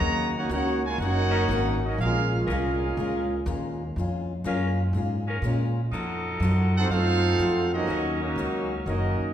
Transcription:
Already playing: C#3 F#3 A#3 F#4 C#5 D#5 A#5
0.00 D#2 D#3 A#3 C#4 F#4
0.37 A#3 C#4 D#4 F#4 A#4 C#5 F#5
0.49 C#2 D#3 A#3 C#4 D#4 F#4 A#4 C#5 F#5
0.54 A#3 C#4 F#4
0.86 G#3 F4 A#4 C#5 G#5
0.98 F#1 D#3 A#3 D#4 A#4 C#5 F#5
1.02 A#3 C#4 F#4
1.30 F#3 C#4 D#4 A#4
1.49 G#1 D#3 A#3 C#4 F#4
1.85 F#3 A#3 C#4 D#4 F#4 A#4 D#5
1.98 A#1 A#2 G#3 C#4 F4 G#4 A#4 F5
2.02 G#3 C#4 F4
2.47 C2 A#2 G#3 C#4 F4 A#4
2.51 G#3 C#4 F4 G#4 A#4 F5
2.97 C#2 A#2 G#3 C#4 F4
3.46 D#2 A#2 G#3 C#4 F4
3.96 F2 A#2 G#3 C#4 F4
4.44 F#2 A#2 G#3 C#4 F4 A#4
4.93 G#2 A#2 G#3 C#4
4.97 F4
5.27 G#3 C#4 F4 A#4
5.42 A#2 G#3 C#4 F4
5.91 F2 F3 F#3 A3 D#4 F4 A4
5.95 F#4
6.40 F#2 F3 A3
6.44 D#4 F#4
6.77 C4 D#4 F#4 A4 C5 F#5
6.89 F#2 F3 A3 C4 D#4 F4 F#4 A4 C5 F5
7.38 F2 F3 A3 D#4 F#4
7.74 F#3 A#3 C#4 D#4 F#4 A#4 D#5
7.87 D#2 D#3 F#3 A#3 C#4 D#4 F#4 A#4
8.22 F#3 A#3 C#4 D#4 F#4 C#5
8.36 C#2 D#3 A#3 C#4 F#4
8.86 F#1 D#3 F#3 A#3 C#4 D#4 F#4 A#4 D#5
9.19 muted upright bass stroke

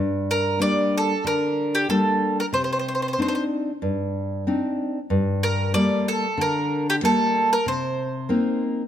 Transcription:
Already playing: G2
0.31 A#4
0.59 G3 A#3 D4 D5
0.98 A4
1.24 D3 A#4
1.75 G4
1.89 G3 A#3 D4 A4
2.40 A#4
2.53 C3 C5
2.64 C5
2.73 C5
2.79 C5
2.88 C5
2.95 C5
3.02 C5
3.08 C5
3.13 C5
3.18 C4 D4 D#4 C5
3.28 C5
3.35 C5
3.82 G2
4.47 C4 D4 D#4
5.10 G2
5.43 A#4
5.74 G3 A3 A#3 D5
6.08 A4
6.38 D3 A#4
6.90 G4
7.02 G3 A3 A#3 A4
7.53 A#4
7.66 C3 C5
8.29 A#3 C4 D#4

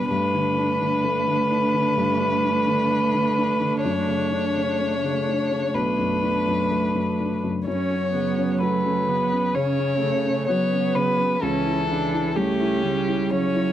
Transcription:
Already playing: E2 B2 G3 D4
0.10 G2 A3 D4 B4
0.34 D3
0.58 D4
0.81 D3
1.04 A3
1.27 D3
1.51 D4
1.74 D3
1.97 G2
2.19 A3
2.43 D4
2.67 D3
2.91 A3
3.14 D3
3.38 D4
3.61 D3
3.83 F#2 C#5
4.08 C#3
4.31 D4
4.55 C#3
4.80 A3
5.03 C#3
5.28 D4
5.51 C#3
5.74 B1 A3 D4 B4
5.98 F#2
6.23 D4
6.47 F#2
6.71 A3
6.95 F#2
7.19 D4
7.43 F#2
7.67 F#2 F#3 C#4 C#5
7.90 C#4
8.14 C#3 B3
8.38 C#4
8.61 F#3 A3 B4
8.85 C#4
9.08 C#3 B3
9.32 C#4
9.55 C#3 C#4 C#5
9.79 C#4
10.01 C#3 A3
10.25 C#4
10.48 F#3 B3 C#5
10.72 C#4
10.95 C#3 B4
11.19 C#4
11.42 C#2 E3 C#4 A4
11.66 E4
11.89 C#3 D4
12.13 E4
12.36 G3 A3 C#4 G4
12.61 E4
12.83 C#3 G3
13.07 E4
13.30 C#3 F#3 C#4 C#5
13.55 E4

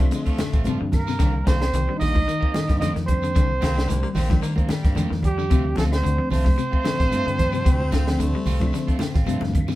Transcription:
Already playing: F3 F4
0.00 F3 A3 C4 D4, kick, closed hi-hat, claves, shekere
0.11 D3 A3, muted clean electric guitar stroke, closed hi-hat, shekere
0.26 F3 A3 F4, muted clean electric guitar stroke, kick, closed hi-hat
0.39 D3, muted clean electric guitar stroke, snare, closed hi-hat, high conga, claves, shekere
0.53 A1 A3 C4 F4, kick, closed hi-hat, shekere
0.64 G2 C3 F3 A3 C4 D4 F4, closed hi-hat, high conga, shekere
0.80 G2 D3, muted clean electric guitar stroke
0.92 A#3 A#4, muted clean electric guitar stroke, kick, snare, closed hi-hat, low conga, claves, shekere
1.07 C3, snare, shekere
1.19 C2 D3 D#3 G3 A#3 C4 D4 G4, muted clean electric guitar stroke, kick, snare, closed hi-hat, claves, shekere
1.34 muted clean electric guitar stroke
1.44 C2 D#3 A#3 C4 C5, muted clean electric guitar stroke, kick, snare, closed hi-hat, high conga, shekere
1.61 muted clean electric guitar stroke, snare, closed hi-hat, claves, shekere
1.73 C2 D#3, closed hi-hat, shekere
1.87 D#3 G3 A#3 D4, muted clean electric guitar stroke
1.96 A#3 D#4 D#5
2.00 A#1 G4, open hi-hat, low conga, shekere
2.14 F3, muted clean electric guitar stroke, kick, high conga, claves, shekere
2.26 D#3, muted clean electric guitar stroke, closed hi-hat, shekere
2.40 D#3 A#3 C4 G4, kick
2.53 D#3 G3 A#3 D4, muted clean electric guitar stroke, snare, closed hi-hat, high conga, claves, shekere
2.67 G2 A#3 C4 G4, kick, snare, closed hi-hat, low conga, shekere
2.76 D#4 D#5
2.80 F2 D3 D#3 A#3 C4 G4, snare, closed hi-hat, high conga, shekere
2.94 F2 D#3, muted clean electric guitar stroke, snare, closed hi-hat
3.05 D#3 C4 C5, muted clean electric guitar stroke, kick, closed hi-hat, low conga, claves
3.09 G3 A#3 D4, shekere
3.22 D3, closed hi-hat, shekere
3.35 C2 D3, kick, closed hi-hat, claves, shekere
3.48 muted clean electric guitar stroke
3.61 C2 D#3 A#3 C4 G4, kick, snare, closed hi-hat, high conga, shekere
3.75 D#3 G3 A#3 D4, muted clean electric guitar stroke, snare, closed hi-hat, claves, shekere
3.88 C2 D#3 A#3, closed hi-hat, high conga, shekere
4.02 G3 A#3, muted clean electric guitar stroke
4.14 A#1 D#3 A#3 C4 G4, snare, open hi-hat, low conga, shekere
4.29 D#3 F3 G3 A#3 D4, muted clean electric guitar stroke, kick, snare, closed hi-hat, high conga, claves, shekere
4.42 D#3 A#3, muted clean electric guitar stroke, closed hi-hat, shekere
4.56 D#3 A#3 C4, muted clean electric guitar stroke, kick, closed hi-hat, high conga
4.69 D#3 G3, muted clean electric guitar stroke, snare, closed hi-hat, high conga, claves, shekere
4.83 G2 A#3 C4 G4, kick, snare, closed hi-hat, shekere
4.95 F2 D3 D#3 G3 A#3 C4 D4 G4, closed hi-hat, high conga, shekere
5.10 F2 D#3, muted clean electric guitar stroke, snare
5.22 G3 G4, muted clean electric guitar stroke, kick, closed hi-hat, low conga, claves, shekere
5.38 D3, shekere
5.50 D2 C3 F3 A3 C4 D4 F4, kick, closed hi-hat, claves, shekere
5.64 muted clean electric guitar stroke
5.76 D2 F3 A3 C4 F4 A4, kick, snare, closed hi-hat, high conga, shekere
5.91 C4 C5, muted clean electric guitar stroke, snare, closed hi-hat, claves, shekere
6.03 D2 D3, closed hi-hat, high conga, shekere
6.17 F3 A3 C4 D4, muted clean electric guitar stroke
6.31 C2 A3 C4 F4 C5, snare, open hi-hat, low conga, shekere
6.45 F3, muted clean electric guitar stroke, kick, snare, high conga, claves, shekere
6.57 C3, muted clean electric guitar stroke, closed hi-hat, shekere
6.71 A3 C4 F4, kick
6.84 D3 F3 A3 C4 D4, muted clean electric guitar stroke, snare, closed hi-hat, high conga, claves, shekere
6.98 A1 C4 F4, kick, snare, closed hi-hat, shekere
7.11 G2 F3 A3 C4 F4, closed hi-hat, high conga, shekere
7.26 G2 D3, muted clean electric guitar stroke, closed hi-hat
7.39 F3 A3 C4 D4, muted clean electric guitar stroke, kick, closed hi-hat, low conga, claves, shekere
7.52 C3, closed hi-hat, shekere
7.65 D2 C3 C4, kick, closed hi-hat, claves, shekere
7.80 muted clean electric guitar stroke, high conga
7.91 D2 D3 C4 F4, kick, snare, closed hi-hat, high conga, shekere
8.06 F3 A3 C4 D4, muted clean electric guitar stroke, snare, closed hi-hat, claves, shekere
8.19 D2 D3 A3, closed hi-hat, high conga, shekere
8.34 G3, muted clean electric guitar stroke
8.46 C2 A3 C4 F4, open hi-hat, low conga, shekere
8.60 F3 A3 C4 D4, muted clean electric guitar stroke, kick, closed hi-hat, high conga, claves, shekere
8.73 D3, muted clean electric guitar stroke, snare, closed hi-hat, shekere
8.87 A3 C4 F4, kick, closed hi-hat
8.99 D3 G5, muted clean electric guitar stroke, snare, closed hi-hat, high conga, claves, shekere
9.14 A1 C4 F4, kick, snare, closed hi-hat, low conga, shekere
9.26 G2 C3 F3 A3 C4 D4 F4 F5, closed hi-hat, high conga, shekere
9.41 G2 D3, muted clean electric guitar stroke, snare, high conga
9.49 high conga
9.53 muted clean electric guitar stroke, kick, closed hi-hat, claves, shekere
9.58 low conga
9.68 C3, snare, low conga, shekere

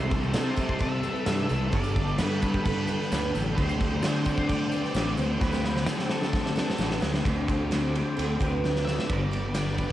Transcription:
Already playing: C2 C3 E3 G3 A3 E4 G4 A4 C5 E5 A5
0.10 G3 C4, kick, tambourine, crash
0.23 tambourine
0.32 C3 G3 A3 C4 E4 A4, snare, tambourine, crash
0.38 A4
0.55 G3 C4 E4 A4, kick, tambourine, crash
0.61 A3
0.69 kick
0.79 A4 E5, kick, tambourine, crash
1.02 G3 C4 B4, tambourine, crash
1.15 tambourine
1.25 G2 C3 E3 G3 A3 C4 E4 E5, snare, tambourine, crash
1.29 A4
1.38 tambourine
1.49 C2 G3 A3 E4 A4, tambourine, crash
1.71 G1 G2 D3 G3 B3 D4 G4 D5 G5 B5, kick, tambourine, crash
1.75 A4
1.84 tambourine
1.95 D3 G3, kick, tambourine, crash
2.08 tambourine
2.18 G2 D3 G3 B3 D4 A4 B4, snare, tambourine, crash
2.30 tambourine
2.41 G3 B3 D4 A4, kick, tambourine, crash
2.45 D3
2.53 kick, tambourine
2.65 A4 B4, kick, tambourine, crash
2.87 D3 G3 B4, tambourine, crash
3.01 snare, tambourine
3.10 D2 G2 D3 G3 B3 D4 A4, snare, tambourine, crash
3.23 tambourine
3.34 A1 B3 D4 A4, tambourine, crash
3.55 D2 D3 G3 A3 C4 D4 G4 C5 D6, kick, tambourine, crash
3.60 G4 A4
3.69 tambourine
3.79 A3 D4, kick, tambourine, crash
4.03 D3 G3 A3 C4 D4 G4 A4, snare, tambourine, crash
4.15 tambourine
4.26 C4 D4 G4 A4, kick, tambourine, crash
4.30 A3
4.38 kick, tambourine
4.48 A4 D5, kick, tambourine, crash
4.72 D4 B4, tambourine, crash
4.76 A3
4.84 snare, tambourine
4.94 A1 D3 G3 A3 C4 D4 G4 A4, snare, tambourine, crash
5.16 D2 C4 G4 A4, tambourine, crash
5.39 D2 D3 G3 A3 C4 D4 G4 A4 B4, kick, snare, tambourine
5.52 snare, tambourine
5.64 A3 D4, snare
5.76 snare, tambourine
5.85 D3 G3 A3 C4 G4 A4, snare, tambourine
5.89 D4 A4
5.98 snare, tambourine
6.08 D4 G4 A4, snare
6.12 A3 C4
6.21 snare, tambourine
6.32 A4, kick, snare, tambourine
6.44 snare, tambourine
6.56 A3 D4 B4, snare, tambourine
6.67 snare, tambourine
6.78 A1 D3 G3 A3 C4 D4 G4 A4, snare, tambourine
6.91 snare
7.01 D2 G4 A4, snare, tambourine
7.05 C4
7.12 snare, tambourine
7.24 D2 D3 A3 C4 D4 G4 G5 D6, kick, ride
7.28 A4
7.48 A3 C4 D4 G4 A4, kick, ride
7.71 D3 A3 C4 D4 G4 A4, snare, ride
7.93 A3 D4 G4 A4, ride
7.98 C4
8.17 D2 D3 C4 G4 A4, ride
8.39 D2 A3 D4 G4 A4 B4, kick, ride
8.44 C4
8.63 D3 A3 D4, snare
8.76 snare
8.85 G4 A4 E5, snare
8.89 C4
8.99 snare
9.07 G1 G2 D3 G3 B4 D5 G5 D6, kick, ride
9.11 B3 D4 G4
9.31 G4, ride
9.54 B4 D5, snare, ride, tambourine
9.67 snare
9.78 G2 D3 G3, kick, ride

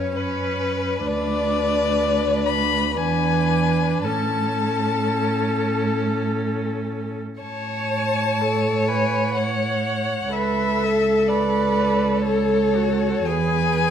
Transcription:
Already playing: F#2 C#4 B4 C#5
0.16 C#4 B4
1.07 D2 D4 B4 D5
2.47 B5
2.94 E2 D4 B4 G#5
4.04 A2 C#4 A4 A5
7.41 A2 C#5 A5
8.41 A4
8.88 B4 G#5
9.35 C#5 F#5
10.33 C#2 A4 B4 E5
10.83 A4
11.28 B4 D5
12.22 A4 C#5
12.76 F#4
13.26 E2 G#4 B4 G#5

